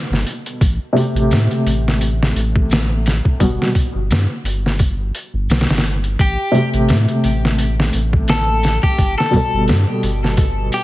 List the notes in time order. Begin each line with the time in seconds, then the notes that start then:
Already playing: B2 G3 A4
0.10 G1, snare
0.27 open hi-hat
0.46 closed hi-hat
0.61 A1, kick, open hi-hat
0.93 C3 A3, open hi-hat
0.98 G4
1.15 A1, closed hi-hat
1.31 A2, snare, open hi-hat, shaker
1.51 closed hi-hat
1.66 A1, open hi-hat
1.88 snare
2.01 open hi-hat
2.23 snare
2.35 A1, open hi-hat
2.55 kick
2.70 snare, open hi-hat, shaker
3.06 snare, open hi-hat
3.25 kick
3.40 G1 B2 G3 F#4, kick, open hi-hat
3.62 snare
3.75 kick, open hi-hat
3.94 G1
4.09 G2, snare, open hi-hat, shaker
4.44 G1, open hi-hat
4.66 snare
4.79 kick, open hi-hat
5.15 open hi-hat
5.34 G1
5.49 B1, snare, open hi-hat, shaker
5.59 snare, open hi-hat
5.69 G1, snare, open hi-hat
5.76 snare, open hi-hat
5.84 open hi-hat
6.04 closed hi-hat
6.19 A1 G4, kick, open hi-hat
6.52 C3 A3, open hi-hat
6.57 G4
6.74 A1, closed hi-hat
6.89 A2, snare, open hi-hat, shaker
7.08 closed hi-hat
7.24 A1, open hi-hat
7.45 snare
7.58 open hi-hat
7.80 snare
7.93 A1, open hi-hat
8.13 kick
8.28 A4, snare, open hi-hat, shaker
8.63 snare, open hi-hat
8.83 G4, kick
8.98 G1, kick, open hi-hat
9.18 A4, snare
9.31 B2 G3, kick, open hi-hat
9.36 A4
9.53 G1
9.68 G2, snare, open hi-hat, shaker
10.03 G1, open hi-hat
10.24 snare
10.37 kick, open hi-hat
10.72 G4, open hi-hat